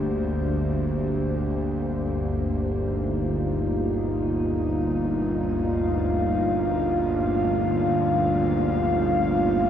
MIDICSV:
0, 0, Header, 1, 3, 480
1, 0, Start_track
1, 0, Tempo, 500000
1, 9310, End_track
2, 0, Start_track
2, 0, Title_t, "Analog synth pad"
2, 0, Program_c, 0, 89
2, 0, Note_on_c, 0, 58, 67
2, 0, Note_on_c, 0, 62, 61
2, 0, Note_on_c, 0, 67, 59
2, 0, Note_on_c, 0, 72, 59
2, 1818, Note_on_c, 0, 43, 67
2, 1827, Note_off_c, 0, 62, 0
2, 2654, Note_on_c, 0, 63, 72
2, 2918, Note_on_c, 0, 65, 64
2, 3610, Note_off_c, 0, 72, 0
2, 3764, Note_off_c, 0, 67, 0
2, 5251, Note_on_c, 0, 77, 74
2, 9088, Note_on_c, 0, 62, 76
2, 9310, Note_off_c, 0, 43, 0
2, 9310, Note_off_c, 0, 58, 0
2, 9310, Note_off_c, 0, 62, 0
2, 9310, Note_off_c, 0, 63, 0
2, 9310, Note_off_c, 0, 65, 0
2, 9310, Note_off_c, 0, 77, 0
2, 9310, End_track
3, 0, Start_track
3, 0, Title_t, "Synth drone"
3, 0, Program_c, 1, 95
3, 0, Note_on_c, 1, 31, 63
3, 0, Note_on_c, 1, 38, 69
3, 9310, Note_off_c, 1, 31, 0
3, 9310, Note_off_c, 1, 38, 0
3, 9310, End_track
0, 0, End_of_file